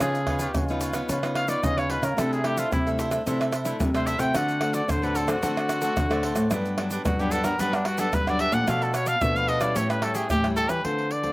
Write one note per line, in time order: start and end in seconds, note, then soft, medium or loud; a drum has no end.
0.00 0.46 C#3 loud
0.00 0.53 C#3 medium
0.00 0.17 B3 medium
0.00 0.17 D#4 medium
0.00 0.27 F4 medium
0.00 0.18 F4 medium
0.00 0.79 G#4 medium
0.00 0.28 B4 medium
0.00 0.28 C#5 medium
0.00 0.28 F5 medium
0.00 pandeiro medium
0.00 tamborim medium
0.00 shaker medium
0.00 surdo medium
0.15 pandeiro soft
0.15 shaker soft
0.27 0.64 B3 medium
0.27 0.65 D#4 medium
0.27 0.40 F4 medium
0.27 0.65 F4 medium
0.27 0.40 B4 medium
0.27 0.41 C#5 medium
0.27 0.41 F5 medium
0.27 pandeiro medium
0.27 tamborim medium
0.27 surdo medium
0.39 0.50 F4 medium
0.39 0.51 B4 medium
0.39 0.51 C#5 medium
0.39 0.51 F5 medium
0.39 pandeiro medium
0.39 shaker medium
0.54 1.01 C#3 medium
0.54 1.07 G#3 medium
0.54 pandeiro medium
0.54 tamborim medium
0.54 shaker medium
0.54 surdo loud
0.68 0.92 B3 medium
0.68 0.92 D#4 medium
0.68 0.93 F4 medium
0.68 0.83 C#5 soft
0.68 0.82 F5 soft
0.68 pandeiro soft
0.68 shaker soft
0.73 0.82 B4 soft
0.81 0.95 F4 medium
0.81 0.95 B4 medium
0.81 0.95 C#5 medium
0.81 0.94 F5 medium
0.81 pandeiro medium
0.81 shaker medium
0.93 1.18 B3 medium
0.93 1.18 D#4 medium
0.93 1.18 F4 medium
0.93 1.09 B4 soft
0.93 1.08 C#5 medium
0.93 1.08 F5 medium
0.93 pandeiro medium
0.93 tamborim medium
0.93 shaker medium
1.09 1.55 C#3 medium
1.09 1.61 C#3 medium
1.09 1.22 F4 medium
1.09 1.23 B4 medium
1.09 1.23 C#5 medium
1.09 1.23 F5 medium
1.09 pandeiro medium
1.09 shaker medium
1.09 surdo medium
1.23 1.46 B3 medium
1.23 1.46 D#4 medium
1.23 1.46 F4 medium
1.23 1.37 C#5 soft
1.23 1.36 F5 soft
1.23 pandeiro soft
1.23 tamborim medium
1.23 shaker soft
1.27 1.37 B4 soft
1.35 1.48 F4 medium
1.35 1.49 B4 medium
1.35 1.49 C#5 medium
1.35 1.50 F5 medium
1.35 pandeiro medium
1.35 tamborim medium
1.39 1.50 F5 medium
1.48 1.85 B3 medium
1.48 1.86 D#4 medium
1.48 1.86 F4 medium
1.48 1.59 F4 medium
1.48 1.59 B4 medium
1.48 1.59 C#5 medium
1.48 1.65 D5 medium
1.48 1.60 F5 medium
1.48 pandeiro medium
1.48 shaker medium
1.63 1.98 C#3 medium
1.63 2.15 G#3 medium
1.63 1.80 D#5 loud
1.63 pandeiro medium
1.63 tamborim medium
1.63 shaker medium
1.63 surdo loud
1.78 1.90 B4 soft
1.78 1.92 C#5 medium
1.78 1.91 C#5 soft
1.78 1.90 F5 medium
1.78 pandeiro soft
1.78 tamborim medium
1.78 shaker soft
1.90 2.08 B3 medium
1.90 2.08 D#4 soft
1.90 2.17 F4 medium
1.90 2.08 F4 medium
1.90 2.05 B4 medium
1.90 2.17 B4 medium
1.90 2.17 C#5 medium
1.90 2.18 F5 medium
1.90 pandeiro medium
2.02 2.14 C#3 medium
2.02 2.20 A#4 medium
2.02 pandeiro medium
2.02 tamborim medium
2.02 shaker medium
2.17 2.63 C3 medium
2.17 2.69 C3 medium
2.17 2.41 A3 medium
2.17 2.41 D4 medium
2.17 2.43 E4 medium
2.17 2.41 E4 medium
2.17 2.34 A4 medium
2.17 2.44 A4 medium
2.17 2.45 C5 medium
2.17 2.45 E5 medium
2.17 pandeiro medium
2.17 tamborim medium
2.17 shaker medium
2.17 surdo medium
2.33 2.47 G#4 medium
2.33 pandeiro soft
2.33 shaker soft
2.44 2.70 A3 medium
2.44 2.70 D4 medium
2.44 2.56 E4 soft
2.44 2.70 E4 medium
2.44 2.60 G4 medium
2.44 2.57 A4 medium
2.44 2.57 C5 medium
2.44 2.58 E5 medium
2.44 pandeiro medium
2.44 tamborim medium
2.57 2.67 E4 medium
2.57 2.72 F4 medium
2.57 2.67 A4 medium
2.57 2.68 C5 medium
2.57 2.68 E5 medium
2.57 pandeiro medium
2.57 shaker medium
2.71 3.18 C3 medium
2.71 3.23 G3 medium
2.71 2.89 E4 medium
2.71 pandeiro medium
2.71 tamborim medium
2.71 shaker medium
2.71 surdo loud
2.86 3.09 A3 medium
2.86 3.09 D4 medium
2.86 3.09 E4 medium
2.86 2.99 A4 soft
2.86 2.99 C5 soft
2.86 2.99 E5 soft
2.86 pandeiro soft
2.86 shaker soft
2.99 3.11 E4 medium
2.99 3.12 A4 medium
2.99 3.12 C5 medium
2.99 3.10 E5 medium
2.99 pandeiro medium
2.99 shaker medium
3.11 3.21 A3 medium
3.11 3.21 D4 medium
3.11 3.22 E4 medium
3.11 3.26 A4 soft
3.11 3.25 C5 medium
3.11 3.24 E5 medium
3.11 pandeiro medium
3.11 tamborim medium
3.11 shaker medium
3.26 3.78 C3 medium
3.26 3.72 C3 medium
3.26 3.52 A3 medium
3.26 3.52 D4 medium
3.26 3.39 E4 medium
3.26 3.52 E4 medium
3.26 3.39 A4 medium
3.26 3.40 C5 medium
3.26 3.39 E5 medium
3.26 pandeiro medium
3.26 shaker medium
3.26 surdo medium
3.40 3.52 A4 soft
3.40 3.53 C5 soft
3.40 3.52 E5 medium
3.40 pandeiro soft
3.40 tamborim medium
3.40 shaker soft
3.52 3.64 E4 medium
3.52 3.65 A4 medium
3.52 3.65 C5 medium
3.52 3.65 E5 medium
3.52 pandeiro medium
3.52 tamborim medium
3.52 shaker medium
3.65 3.89 A3 medium
3.65 3.89 D4 medium
3.65 3.75 E4 medium
3.65 3.89 E4 medium
3.65 3.75 A4 medium
3.65 3.76 C5 medium
3.65 3.76 E5 medium
3.65 pandeiro medium
3.65 shaker medium
3.80 4.15 C3 medium
3.80 4.32 G3 medium
3.80 pandeiro medium
3.80 tamborim medium
3.80 shaker medium
3.80 surdo loud
3.94 4.17 A3 medium
3.94 4.17 D4 medium
3.94 4.17 E4 medium
3.94 4.06 A4 soft
3.94 4.07 C5 soft
3.94 4.08 C5 medium
3.94 4.07 E5 medium
3.94 pandeiro soft
3.94 tamborim medium
3.94 shaker soft
4.06 4.33 E4 medium
4.06 4.34 A4 medium
4.06 4.34 C5 medium
4.06 4.21 E5 loud
4.06 4.34 E5 medium
4.06 pandeiro medium
4.06 shaker medium
4.19 4.31 C3 medium
4.19 4.57 A3 medium
4.19 4.57 C4 medium
4.19 4.57 F#4 medium
4.19 4.37 G5 medium
4.19 pandeiro medium
4.19 tamborim medium
4.19 shaker medium
4.34 4.86 D3 medium
4.34 4.81 D3 loud
4.34 4.60 F#4 medium
4.34 4.61 A4 medium
4.34 4.62 C5 medium
4.34 4.62 D5 medium
4.34 4.76 F#5 medium
4.34 pandeiro medium
4.34 tamborim medium
4.34 shaker medium
4.34 surdo medium
4.48 pandeiro soft
4.48 shaker soft
4.61 4.98 A3 medium
4.61 4.98 C4 medium
4.61 4.72 F#4 medium
4.61 4.98 F#4 medium
4.61 4.72 A4 medium
4.61 4.73 C5 medium
4.61 4.74 D5 medium
4.61 pandeiro medium
4.61 tamborim medium
4.73 4.83 F#4 medium
4.73 4.84 A4 medium
4.73 4.84 C5 medium
4.73 4.91 D5 medium
4.73 4.84 D5 medium
4.73 pandeiro medium
4.73 shaker medium
4.88 5.40 A2 medium
4.88 5.34 D3 medium
4.88 5.06 C5 medium
4.88 pandeiro medium
4.88 tamborim medium
4.88 shaker medium
4.88 surdo loud
5.02 5.25 A3 medium
5.02 5.25 C4 medium
5.02 5.25 F#4 medium
5.02 5.15 A4 soft
5.02 5.18 B4 medium
5.02 5.16 C5 soft
5.02 5.15 D5 soft
5.02 pandeiro soft
5.02 shaker soft
5.15 5.28 F#4 medium
5.15 5.31 A4 medium
5.15 5.29 A4 medium
5.15 5.28 C5 medium
5.15 5.27 D5 medium
5.15 pandeiro medium
5.15 shaker medium
5.28 5.38 A3 medium
5.28 5.38 C4 medium
5.28 5.38 F#4 medium
5.28 6.65 F#4 medium
5.28 5.42 A4 soft
5.28 5.42 C5 medium
5.28 5.41 D5 medium
5.28 pandeiro medium
5.28 tamborim medium
5.28 shaker medium
5.42 5.94 D3 medium
5.42 5.89 D3 loud
5.42 5.79 A3 medium
5.42 5.79 C4 medium
5.42 5.56 F#4 medium
5.42 5.80 F#4 medium
5.42 5.56 A4 medium
5.42 5.56 C5 medium
5.42 5.56 D5 medium
5.42 pandeiro medium
5.42 shaker medium
5.42 surdo medium
5.57 5.69 A4 soft
5.57 5.70 C5 soft
5.57 5.69 D5 soft
5.57 pandeiro soft
5.57 tamborim medium
5.57 shaker soft
5.69 5.82 F#4 medium
5.69 5.83 A4 medium
5.69 5.83 C5 medium
5.69 5.83 D5 medium
5.69 pandeiro medium
5.69 tamborim medium
5.69 shaker medium
5.81 6.05 A3 medium
5.81 6.06 C4 medium
5.81 6.06 F#4 medium
5.81 5.92 F#4 medium
5.81 5.93 A4 medium
5.81 5.93 C5 medium
5.81 5.93 D5 medium
5.81 pandeiro medium
5.81 shaker medium
5.96 6.48 A2 medium
5.96 6.32 D3 medium
5.96 pandeiro medium
5.96 tamborim medium
5.96 shaker medium
5.96 surdo loud
6.10 6.49 A3 medium
6.10 6.49 C4 medium
6.10 6.49 F#4 medium
6.10 6.23 A4 soft
6.10 6.23 C5 medium
6.10 6.24 D5 medium
6.10 pandeiro soft
6.10 tamborim medium
6.10 shaker soft
6.23 6.50 F#4 medium
6.23 6.50 A4 medium
6.23 6.50 C5 medium
6.23 6.51 D5 medium
6.23 pandeiro medium
6.36 6.48 A2 medium
6.36 pandeiro medium
6.36 tamborim medium
6.36 shaker medium
6.50 6.97 G2 medium
6.50 7.03 G2 medium
6.50 6.74 F#3 medium
6.50 6.74 B3 medium
6.50 6.77 D4 medium
6.50 6.74 D4 medium
6.50 6.78 G4 medium
6.50 6.78 B4 medium
6.50 6.79 F#5 medium
6.50 pandeiro medium
6.50 tamborim medium
6.50 shaker medium
6.50 surdo medium
6.66 pandeiro soft
6.66 shaker soft
6.78 7.14 F#3 medium
6.78 7.15 B3 medium
6.78 6.91 D4 medium
6.78 7.15 D4 medium
6.78 6.91 G4 medium
6.78 6.91 B4 medium
6.78 6.92 F#5 medium
6.78 pandeiro medium
6.78 tamborim medium
6.91 7.01 D4 medium
6.91 7.01 G4 medium
6.91 7.01 B4 medium
6.91 7.02 F#5 medium
6.91 pandeiro medium
6.91 shaker medium
7.05 7.51 G2 medium
7.05 7.57 D3 medium
7.05 7.21 F#4 medium
7.05 pandeiro medium
7.05 tamborim medium
7.05 shaker medium
7.05 surdo loud
7.19 7.42 F#3 medium
7.19 7.42 B3 medium
7.19 7.42 D4 medium
7.19 7.33 G4 medium
7.19 7.32 G4 soft
7.19 7.33 B4 soft
7.19 7.32 F#5 soft
7.19 pandeiro soft
7.19 shaker soft
7.31 7.45 D4 medium
7.31 7.45 G4 medium
7.31 7.46 A4 medium
7.31 7.45 B4 medium
7.31 7.44 F#5 medium
7.31 pandeiro medium
7.31 shaker medium
7.44 7.54 F#3 medium
7.44 7.54 B3 medium
7.44 7.55 D4 medium
7.44 7.59 G4 soft
7.44 7.61 A#4 medium
7.44 7.59 B4 soft
7.44 7.58 F#5 medium
7.44 pandeiro medium
7.44 tamborim medium
7.44 shaker medium
7.59 8.11 G2 medium
7.59 8.05 G2 medium
7.59 7.85 F#3 medium
7.59 7.85 B3 medium
7.59 7.85 D4 medium
7.59 7.72 D4 medium
7.59 7.73 G4 medium
7.59 7.76 B4 loud
7.59 7.73 B4 medium
7.59 7.73 F#5 medium
7.59 pandeiro medium
7.59 shaker medium
7.59 surdo medium
7.73 7.87 D4 medium
7.73 7.86 G4 soft
7.73 7.86 B4 soft
7.73 7.86 F#5 soft
7.73 pandeiro soft
7.73 tamborim loud
7.73 shaker soft
7.85 7.97 D4 medium
7.85 8.01 F#4 medium
7.85 7.98 G4 medium
7.85 7.98 B4 medium
7.85 7.99 F#5 medium
7.85 pandeiro medium
7.85 tamborim medium
7.98 8.22 F#3 medium
7.98 8.22 B3 medium
7.98 8.08 D4 medium
7.98 8.22 D4 medium
7.98 8.09 G4 medium
7.98 8.16 A4 medium
7.98 8.09 B4 medium
7.98 8.09 F#5 medium
7.98 pandeiro medium
7.98 shaker medium
8.13 8.48 G2 medium
8.13 8.65 D3 medium
8.13 8.30 B4 medium
8.13 pandeiro medium
8.13 tamborim medium
8.13 shaker medium
8.13 surdo loud
8.27 8.51 F#3 medium
8.27 8.51 B3 medium
8.27 8.51 D4 medium
8.27 8.39 G4 soft
8.27 8.40 B4 soft
8.27 8.42 D5 medium
8.27 8.40 F#5 medium
8.27 pandeiro soft
8.27 tamborim medium
8.27 shaker soft
8.39 8.66 D4 medium
8.39 8.67 G4 medium
8.39 8.67 B4 medium
8.39 8.55 E5 loud
8.39 8.67 F#5 medium
8.39 pandeiro medium
8.52 8.64 A#2 medium
8.52 8.90 F3 medium
8.52 8.90 A3 medium
8.52 8.90 D4 medium
8.52 8.70 F#5 loud
8.52 pandeiro medium
8.52 tamborim medium
8.52 shaker medium
8.67 9.14 B2 loud
8.67 9.20 B2 medium
8.67 8.92 D4 medium
8.67 8.93 A4 medium
8.67 8.94 B4 medium
8.67 8.84 F5 medium
8.67 8.95 F5 medium
8.67 pandeiro medium
8.67 tamborim medium
8.67 shaker medium
8.67 surdo medium
8.82 8.96 A4 medium
8.82 pandeiro soft
8.82 shaker soft
8.94 9.05 D4 medium
8.94 9.05 A4 medium
8.94 9.06 B4 medium
8.94 9.09 C#5 medium
8.94 9.06 F5 medium
8.94 pandeiro medium
8.94 tamborim medium
8.94 shaker medium
9.06 9.16 D4 medium
9.06 9.17 A4 medium
9.06 9.17 B4 medium
9.06 9.23 F5 loud
9.06 9.17 F5 medium
9.06 pandeiro medium
9.06 shaker medium
9.21 9.74 B2 medium
9.21 9.76 B2 loud
9.21 9.58 F3 medium
9.21 9.58 A3 medium
9.21 9.59 D4 medium
9.21 9.37 E5 loud
9.21 pandeiro medium
9.21 tamborim medium
9.21 shaker medium
9.21 surdo loud
9.36 9.47 A4 soft
9.36 9.48 B4 soft
9.36 9.48 F5 soft
9.36 9.50 F5 loud
9.36 pandeiro soft
9.36 shaker soft
9.47 9.61 D4 medium
9.47 9.61 A4 medium
9.47 9.61 B4 medium
9.47 9.63 D#5 loud
9.47 9.59 F5 medium
9.47 pandeiro medium
9.60 9.98 G3 medium
9.60 9.98 C#4 medium
9.60 9.99 E4 medium
9.60 9.75 A4 soft
9.60 9.75 B4 medium
9.60 9.78 D5 medium
9.60 9.74 F5 medium
9.60 pandeiro medium
9.60 tamborim medium
9.60 shaker medium
9.75 10.22 A2 medium
9.75 10.28 A2 medium
9.75 9.88 G4 medium
9.75 9.89 A4 medium
9.75 9.91 C#5 medium
9.75 9.89 C#5 medium
9.75 9.89 G5 medium
9.75 pandeiro medium
9.75 shaker medium
9.75 surdo medium
9.90 10.02 A4 soft
9.90 10.05 B4 medium
9.90 10.03 C#5 soft
9.90 10.03 G5 medium
9.90 pandeiro soft
9.90 tamborim medium
9.90 shaker soft
10.02 10.39 G3 medium
10.02 10.39 C#4 medium
10.02 10.40 E4 medium
10.02 10.14 G4 medium
10.02 10.17 A4 medium
10.02 10.14 A4 medium
10.02 10.15 C#5 medium
10.02 10.15 G5 medium
10.02 pandeiro medium
10.02 tamborim medium
10.15 10.25 G4 medium
10.15 10.30 G#4 medium
10.15 10.25 A4 medium
10.15 10.26 C#5 medium
10.15 10.26 G5 medium
10.15 pandeiro medium
10.15 shaker medium
10.30 10.65 A2 medium
10.30 10.82 E3 medium
10.30 10.47 G4 medium
10.30 pandeiro medium
10.30 tamborim medium
10.30 shaker medium
10.30 surdo loud
10.44 10.81 G3 medium
10.44 10.81 C#4 medium
10.44 10.81 E4 medium
10.44 10.56 A4 soft
10.44 10.56 C#5 medium
10.44 10.57 G5 medium
10.44 pandeiro soft
10.44 tamborim medium
10.44 shaker soft
10.56 10.83 G4 medium
10.56 10.70 A4 loud
10.56 10.83 A4 medium
10.56 10.84 C#5 medium
10.56 10.84 G5 medium
10.56 pandeiro medium
10.56 shaker medium
10.69 10.82 E3 medium
10.69 10.86 B4 medium
10.69 pandeiro medium
10.69 tamborim medium
10.69 shaker medium
10.84 11.33 D3 soft
10.84 11.31 D3 medium
10.84 11.10 A3 medium
10.84 11.10 C4 soft
10.84 11.11 F4 medium
10.84 11.13 C5 medium
10.84 pandeiro medium
10.84 surdo medium
10.99 pandeiro soft
11.11 11.33 D5 loud
11.11 pandeiro medium
11.23 11.33 A3 medium
11.23 11.33 C4 medium
11.23 11.33 F4 medium
11.23 pandeiro medium
11.23 surdo soft